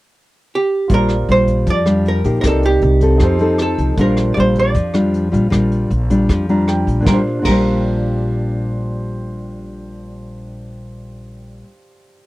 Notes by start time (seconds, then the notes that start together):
0.55 G4
0.88 A#1 A#2 G3 D4 F4 G4 C5, kick, closed hi-hat
0.93 A#4 D5
1.09 cross-stick, closed hi-hat
1.29 A#1 G3 D4 F4 C5, closed hi-hat
1.48 kick, closed hi-hat
1.66 F2 F3 D5, kick, closed hi-hat
1.85 G3 D4 F4, cross-stick, closed hi-hat
2.05 A#4, closed hi-hat
2.24 A#1 A#3 D#4 G4, kick, closed hi-hat
2.41 C2 C3 D#4 G4 A#4, kick, cross-stick, closed hi-hat
2.45 A4 A#4 D5
2.63 G4, closed hi-hat
2.81 C2, closed hi-hat
3.00 C4 D#4 A4, kick, closed hi-hat
3.18 F2 F3 D#4 G4, kick, cross-stick, closed hi-hat
3.22 A4 C5
3.39 C4 D#4 A4, closed hi-hat
3.58 A4, cross-stick, closed hi-hat
3.78 C2, kick, closed hi-hat
3.97 A#1 A#2 G3 D4 F4 G4 A#4, kick, closed hi-hat
4.02 C5
4.17 cross-stick, closed hi-hat
4.34 A#1 G3 D4 F4 D5, closed hi-hat
4.40 C5
4.55 kick, closed hi-hat
4.59 D5
4.75 F2 F3, kick, closed hi-hat
4.94 G3 D4 F4, cross-stick, closed hi-hat
5.14 closed hi-hat
5.32 A#1 G3 D4 F4, kick, closed hi-hat
5.50 A#1 A#2 G3 D4 F4, kick, cross-stick, closed hi-hat
5.72 closed hi-hat
5.91 A#1, closed hi-hat
6.10 G3 D4 F4, kick, closed hi-hat
6.29 F2 F3, kick, cross-stick, closed hi-hat
6.49 G3 D4 F4 A#5, closed hi-hat
6.68 G5, cross-stick, closed hi-hat
6.87 A#1, kick, closed hi-hat
7.00 A#2 D4
7.05 A#1 G3 F4 G4 A#4, kick, snare
7.12 D4 C5
7.17 F4
7.39 A#2 D4 F4
7.45 A#1 G3 G4 A#4, kick, crash
7.51 D4 C5
7.58 F4